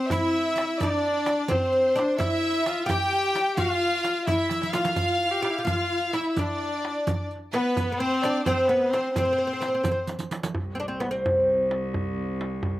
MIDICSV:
0, 0, Header, 1, 7, 480
1, 0, Start_track
1, 0, Tempo, 464396
1, 820, Time_signature, 6, 3, 24, 8
1, 13228, End_track
2, 0, Start_track
2, 0, Title_t, "Violin section"
2, 0, Program_c, 0, 48
2, 0, Note_on_c, 0, 72, 74
2, 99, Note_on_c, 0, 76, 82
2, 104, Note_off_c, 0, 72, 0
2, 820, Note_off_c, 0, 76, 0
2, 822, Note_on_c, 0, 74, 79
2, 1541, Note_off_c, 0, 74, 0
2, 1552, Note_on_c, 0, 72, 74
2, 2251, Note_on_c, 0, 76, 91
2, 2266, Note_off_c, 0, 72, 0
2, 2935, Note_off_c, 0, 76, 0
2, 2967, Note_on_c, 0, 79, 94
2, 3653, Note_off_c, 0, 79, 0
2, 3692, Note_on_c, 0, 77, 89
2, 4375, Note_off_c, 0, 77, 0
2, 4409, Note_on_c, 0, 76, 77
2, 4861, Note_off_c, 0, 76, 0
2, 4873, Note_on_c, 0, 77, 90
2, 5841, Note_off_c, 0, 77, 0
2, 5853, Note_on_c, 0, 77, 81
2, 6304, Note_off_c, 0, 77, 0
2, 6329, Note_on_c, 0, 76, 78
2, 6496, Note_off_c, 0, 76, 0
2, 6508, Note_on_c, 0, 76, 47
2, 6580, Note_on_c, 0, 74, 75
2, 6581, Note_off_c, 0, 76, 0
2, 7541, Note_off_c, 0, 74, 0
2, 7775, Note_on_c, 0, 71, 85
2, 8225, Note_off_c, 0, 71, 0
2, 8262, Note_on_c, 0, 72, 81
2, 8498, Note_on_c, 0, 74, 88
2, 8502, Note_off_c, 0, 72, 0
2, 8726, Note_on_c, 0, 72, 78
2, 8739, Note_off_c, 0, 74, 0
2, 8956, Note_off_c, 0, 72, 0
2, 8973, Note_on_c, 0, 71, 67
2, 9183, Note_on_c, 0, 72, 78
2, 9217, Note_off_c, 0, 71, 0
2, 9429, Note_off_c, 0, 72, 0
2, 9441, Note_on_c, 0, 72, 75
2, 10369, Note_off_c, 0, 72, 0
2, 13228, End_track
3, 0, Start_track
3, 0, Title_t, "Kamancheh"
3, 0, Program_c, 1, 110
3, 0, Note_on_c, 1, 60, 72
3, 114, Note_on_c, 1, 64, 80
3, 129, Note_off_c, 1, 60, 0
3, 828, Note_on_c, 1, 62, 82
3, 843, Note_off_c, 1, 64, 0
3, 1533, Note_on_c, 1, 60, 74
3, 1549, Note_off_c, 1, 62, 0
3, 2035, Note_on_c, 1, 62, 75
3, 2050, Note_off_c, 1, 60, 0
3, 2264, Note_on_c, 1, 64, 86
3, 2280, Note_off_c, 1, 62, 0
3, 2760, Note_on_c, 1, 65, 83
3, 2776, Note_off_c, 1, 64, 0
3, 2998, Note_on_c, 1, 67, 94
3, 3013, Note_off_c, 1, 65, 0
3, 3699, Note_on_c, 1, 65, 90
3, 3715, Note_off_c, 1, 67, 0
3, 4409, Note_on_c, 1, 64, 79
3, 4425, Note_off_c, 1, 65, 0
3, 4885, Note_on_c, 1, 65, 81
3, 4900, Note_off_c, 1, 64, 0
3, 5488, Note_on_c, 1, 67, 71
3, 5503, Note_off_c, 1, 65, 0
3, 5591, Note_on_c, 1, 65, 67
3, 5607, Note_off_c, 1, 67, 0
3, 5680, Note_on_c, 1, 64, 67
3, 5695, Note_off_c, 1, 65, 0
3, 5778, Note_on_c, 1, 65, 70
3, 5794, Note_off_c, 1, 64, 0
3, 5838, Note_off_c, 1, 65, 0
3, 5844, Note_on_c, 1, 65, 80
3, 6344, Note_on_c, 1, 64, 74
3, 6360, Note_off_c, 1, 65, 0
3, 6601, Note_on_c, 1, 62, 75
3, 6616, Note_off_c, 1, 64, 0
3, 7551, Note_off_c, 1, 62, 0
3, 7788, Note_on_c, 1, 59, 83
3, 8254, Note_on_c, 1, 60, 103
3, 8269, Note_off_c, 1, 59, 0
3, 8733, Note_off_c, 1, 60, 0
3, 8739, Note_on_c, 1, 60, 86
3, 8970, Note_on_c, 1, 59, 76
3, 8985, Note_off_c, 1, 60, 0
3, 9201, Note_on_c, 1, 60, 75
3, 9216, Note_off_c, 1, 59, 0
3, 9441, Note_off_c, 1, 60, 0
3, 9447, Note_on_c, 1, 60, 76
3, 10372, Note_off_c, 1, 60, 0
3, 13228, End_track
4, 0, Start_track
4, 0, Title_t, "Oud"
4, 0, Program_c, 2, 24
4, 0, Note_on_c, 2, 60, 75
4, 124, Note_on_c, 2, 64, 87
4, 135, Note_off_c, 2, 60, 0
4, 853, Note_off_c, 2, 64, 0
4, 858, Note_on_c, 2, 62, 81
4, 1518, Note_off_c, 2, 62, 0
4, 1537, Note_on_c, 2, 60, 80
4, 1985, Note_off_c, 2, 60, 0
4, 2020, Note_on_c, 2, 62, 87
4, 2253, Note_off_c, 2, 62, 0
4, 2257, Note_on_c, 2, 64, 98
4, 2952, Note_off_c, 2, 64, 0
4, 2957, Note_on_c, 2, 67, 100
4, 3692, Note_off_c, 2, 67, 0
4, 3696, Note_on_c, 2, 65, 86
4, 4423, Note_off_c, 2, 65, 0
4, 4427, Note_on_c, 2, 64, 84
4, 4886, Note_off_c, 2, 64, 0
4, 4891, Note_on_c, 2, 65, 93
4, 5602, Note_off_c, 2, 65, 0
4, 5606, Note_on_c, 2, 67, 87
4, 5761, Note_off_c, 2, 67, 0
4, 5773, Note_on_c, 2, 67, 64
4, 5833, Note_off_c, 2, 67, 0
4, 5837, Note_on_c, 2, 65, 85
4, 6335, Note_off_c, 2, 65, 0
4, 6339, Note_on_c, 2, 64, 78
4, 6588, Note_off_c, 2, 64, 0
4, 6604, Note_on_c, 2, 62, 76
4, 7511, Note_off_c, 2, 62, 0
4, 7791, Note_on_c, 2, 59, 85
4, 8177, Note_off_c, 2, 59, 0
4, 8189, Note_on_c, 2, 59, 69
4, 8255, Note_off_c, 2, 59, 0
4, 8270, Note_on_c, 2, 60, 88
4, 8513, Note_off_c, 2, 60, 0
4, 8528, Note_on_c, 2, 62, 95
4, 8752, Note_off_c, 2, 62, 0
4, 8756, Note_on_c, 2, 60, 88
4, 8982, Note_on_c, 2, 59, 80
4, 8996, Note_off_c, 2, 60, 0
4, 9229, Note_off_c, 2, 59, 0
4, 9240, Note_on_c, 2, 60, 75
4, 9454, Note_off_c, 2, 60, 0
4, 9489, Note_on_c, 2, 60, 80
4, 9548, Note_off_c, 2, 60, 0
4, 9562, Note_on_c, 2, 60, 53
4, 9623, Note_off_c, 2, 60, 0
4, 9640, Note_on_c, 2, 60, 59
4, 9686, Note_off_c, 2, 60, 0
4, 9699, Note_on_c, 2, 60, 51
4, 9768, Note_off_c, 2, 60, 0
4, 9790, Note_on_c, 2, 60, 56
4, 9841, Note_off_c, 2, 60, 0
4, 9854, Note_on_c, 2, 60, 45
4, 9916, Note_off_c, 2, 60, 0
4, 9928, Note_on_c, 2, 60, 47
4, 9999, Note_off_c, 2, 60, 0
4, 10009, Note_on_c, 2, 60, 46
4, 10060, Note_off_c, 2, 60, 0
4, 10073, Note_on_c, 2, 60, 57
4, 10148, Note_off_c, 2, 60, 0
4, 10165, Note_on_c, 2, 60, 52
4, 10233, Note_off_c, 2, 60, 0
4, 10249, Note_on_c, 2, 60, 64
4, 10314, Note_off_c, 2, 60, 0
4, 11111, Note_on_c, 2, 60, 64
4, 11149, Note_off_c, 2, 60, 0
4, 11160, Note_on_c, 2, 62, 81
4, 11241, Note_off_c, 2, 62, 0
4, 11245, Note_on_c, 2, 60, 73
4, 11371, Note_on_c, 2, 59, 79
4, 11376, Note_off_c, 2, 60, 0
4, 11478, Note_off_c, 2, 59, 0
4, 11483, Note_on_c, 2, 60, 84
4, 12709, Note_off_c, 2, 60, 0
4, 13228, End_track
5, 0, Start_track
5, 0, Title_t, "Cello"
5, 0, Program_c, 3, 42
5, 10868, Note_on_c, 3, 36, 74
5, 13228, Note_off_c, 3, 36, 0
5, 13228, End_track
6, 0, Start_track
6, 0, Title_t, "Riq"
6, 113, Note_on_c, 9, 54, 64
6, 216, Note_off_c, 9, 54, 0
6, 352, Note_on_c, 9, 54, 18
6, 456, Note_off_c, 9, 54, 0
6, 575, Note_on_c, 9, 54, 45
6, 679, Note_off_c, 9, 54, 0
6, 829, Note_on_c, 9, 54, 55
6, 933, Note_off_c, 9, 54, 0
6, 1305, Note_on_c, 9, 54, 44
6, 1409, Note_off_c, 9, 54, 0
6, 1532, Note_on_c, 9, 54, 66
6, 1635, Note_off_c, 9, 54, 0
6, 1782, Note_on_c, 9, 54, 18
6, 1886, Note_off_c, 9, 54, 0
6, 2029, Note_on_c, 9, 54, 45
6, 2133, Note_off_c, 9, 54, 0
6, 2270, Note_on_c, 9, 54, 52
6, 2373, Note_off_c, 9, 54, 0
6, 2752, Note_on_c, 9, 54, 48
6, 2856, Note_off_c, 9, 54, 0
6, 2986, Note_on_c, 9, 54, 60
6, 3089, Note_off_c, 9, 54, 0
6, 3224, Note_on_c, 9, 54, 16
6, 3327, Note_off_c, 9, 54, 0
6, 3462, Note_on_c, 9, 54, 47
6, 3565, Note_off_c, 9, 54, 0
6, 3691, Note_on_c, 9, 54, 57
6, 3794, Note_off_c, 9, 54, 0
6, 4177, Note_on_c, 9, 54, 51
6, 4280, Note_off_c, 9, 54, 0
6, 4416, Note_on_c, 9, 54, 62
6, 4520, Note_off_c, 9, 54, 0
6, 4658, Note_on_c, 9, 54, 56
6, 4762, Note_off_c, 9, 54, 0
6, 4786, Note_on_c, 9, 54, 57
6, 4889, Note_off_c, 9, 54, 0
6, 4895, Note_on_c, 9, 54, 70
6, 4999, Note_off_c, 9, 54, 0
6, 5011, Note_on_c, 9, 54, 76
6, 5114, Note_off_c, 9, 54, 0
6, 5130, Note_on_c, 9, 54, 54
6, 5234, Note_off_c, 9, 54, 0
6, 5859, Note_on_c, 9, 54, 63
6, 5962, Note_off_c, 9, 54, 0
6, 6113, Note_on_c, 9, 54, 16
6, 6216, Note_off_c, 9, 54, 0
6, 6344, Note_on_c, 9, 54, 45
6, 6447, Note_off_c, 9, 54, 0
6, 6578, Note_on_c, 9, 54, 55
6, 6682, Note_off_c, 9, 54, 0
6, 7307, Note_on_c, 9, 54, 65
6, 7410, Note_off_c, 9, 54, 0
6, 7553, Note_on_c, 9, 54, 18
6, 7656, Note_off_c, 9, 54, 0
6, 7783, Note_on_c, 9, 54, 54
6, 7886, Note_off_c, 9, 54, 0
6, 8030, Note_on_c, 9, 54, 55
6, 8134, Note_off_c, 9, 54, 0
6, 8509, Note_on_c, 9, 54, 53
6, 8612, Note_off_c, 9, 54, 0
6, 8746, Note_on_c, 9, 54, 69
6, 8850, Note_off_c, 9, 54, 0
6, 8982, Note_on_c, 9, 54, 17
6, 9085, Note_off_c, 9, 54, 0
6, 9231, Note_on_c, 9, 54, 41
6, 9334, Note_off_c, 9, 54, 0
6, 9469, Note_on_c, 9, 54, 66
6, 9572, Note_off_c, 9, 54, 0
6, 9937, Note_on_c, 9, 54, 49
6, 10041, Note_off_c, 9, 54, 0
6, 10177, Note_on_c, 9, 54, 66
6, 10280, Note_off_c, 9, 54, 0
6, 10412, Note_on_c, 9, 54, 52
6, 10515, Note_off_c, 9, 54, 0
6, 10529, Note_on_c, 9, 54, 54
6, 10633, Note_off_c, 9, 54, 0
6, 10658, Note_on_c, 9, 54, 66
6, 10762, Note_off_c, 9, 54, 0
6, 10784, Note_on_c, 9, 54, 80
6, 10887, Note_off_c, 9, 54, 0
6, 13228, End_track
7, 0, Start_track
7, 0, Title_t, "Tombak"
7, 104, Note_on_c, 9, 64, 87
7, 208, Note_off_c, 9, 64, 0
7, 599, Note_on_c, 9, 63, 73
7, 703, Note_off_c, 9, 63, 0
7, 835, Note_on_c, 9, 64, 76
7, 938, Note_off_c, 9, 64, 0
7, 1306, Note_on_c, 9, 63, 76
7, 1409, Note_off_c, 9, 63, 0
7, 1563, Note_on_c, 9, 64, 95
7, 1666, Note_off_c, 9, 64, 0
7, 2054, Note_on_c, 9, 63, 74
7, 2157, Note_off_c, 9, 63, 0
7, 2272, Note_on_c, 9, 64, 90
7, 2375, Note_off_c, 9, 64, 0
7, 2753, Note_on_c, 9, 63, 67
7, 2856, Note_off_c, 9, 63, 0
7, 2993, Note_on_c, 9, 64, 93
7, 3097, Note_off_c, 9, 64, 0
7, 3470, Note_on_c, 9, 63, 67
7, 3573, Note_off_c, 9, 63, 0
7, 3702, Note_on_c, 9, 64, 73
7, 3805, Note_off_c, 9, 64, 0
7, 4181, Note_on_c, 9, 63, 57
7, 4285, Note_off_c, 9, 63, 0
7, 4422, Note_on_c, 9, 64, 89
7, 4525, Note_off_c, 9, 64, 0
7, 4646, Note_on_c, 9, 63, 47
7, 4749, Note_off_c, 9, 63, 0
7, 4771, Note_on_c, 9, 62, 57
7, 4874, Note_off_c, 9, 62, 0
7, 4895, Note_on_c, 9, 63, 71
7, 4998, Note_off_c, 9, 63, 0
7, 5007, Note_on_c, 9, 62, 72
7, 5111, Note_off_c, 9, 62, 0
7, 5129, Note_on_c, 9, 64, 85
7, 5232, Note_off_c, 9, 64, 0
7, 5628, Note_on_c, 9, 63, 62
7, 5732, Note_off_c, 9, 63, 0
7, 5861, Note_on_c, 9, 64, 88
7, 5964, Note_off_c, 9, 64, 0
7, 6341, Note_on_c, 9, 63, 62
7, 6444, Note_off_c, 9, 63, 0
7, 6585, Note_on_c, 9, 64, 73
7, 6688, Note_off_c, 9, 64, 0
7, 7078, Note_on_c, 9, 63, 65
7, 7181, Note_off_c, 9, 63, 0
7, 7312, Note_on_c, 9, 64, 92
7, 7415, Note_off_c, 9, 64, 0
7, 7790, Note_on_c, 9, 63, 64
7, 7893, Note_off_c, 9, 63, 0
7, 8027, Note_on_c, 9, 64, 76
7, 8130, Note_off_c, 9, 64, 0
7, 8512, Note_on_c, 9, 63, 64
7, 8615, Note_off_c, 9, 63, 0
7, 8746, Note_on_c, 9, 64, 88
7, 8849, Note_off_c, 9, 64, 0
7, 9236, Note_on_c, 9, 63, 64
7, 9339, Note_off_c, 9, 63, 0
7, 9465, Note_on_c, 9, 64, 81
7, 9569, Note_off_c, 9, 64, 0
7, 9946, Note_on_c, 9, 63, 64
7, 10049, Note_off_c, 9, 63, 0
7, 10173, Note_on_c, 9, 64, 86
7, 10276, Note_off_c, 9, 64, 0
7, 10432, Note_on_c, 9, 63, 52
7, 10535, Note_off_c, 9, 63, 0
7, 10545, Note_on_c, 9, 62, 61
7, 10648, Note_off_c, 9, 62, 0
7, 10671, Note_on_c, 9, 63, 75
7, 10774, Note_off_c, 9, 63, 0
7, 10784, Note_on_c, 9, 62, 80
7, 10888, Note_off_c, 9, 62, 0
7, 10899, Note_on_c, 9, 64, 75
7, 11002, Note_off_c, 9, 64, 0
7, 11381, Note_on_c, 9, 63, 57
7, 11485, Note_off_c, 9, 63, 0
7, 11635, Note_on_c, 9, 64, 81
7, 11739, Note_off_c, 9, 64, 0
7, 11881, Note_on_c, 9, 62, 25
7, 11984, Note_off_c, 9, 62, 0
7, 12104, Note_on_c, 9, 63, 55
7, 12208, Note_off_c, 9, 63, 0
7, 12343, Note_on_c, 9, 64, 71
7, 12447, Note_off_c, 9, 64, 0
7, 12825, Note_on_c, 9, 63, 57
7, 12928, Note_off_c, 9, 63, 0
7, 13051, Note_on_c, 9, 64, 78
7, 13154, Note_off_c, 9, 64, 0
7, 13228, End_track
0, 0, End_of_file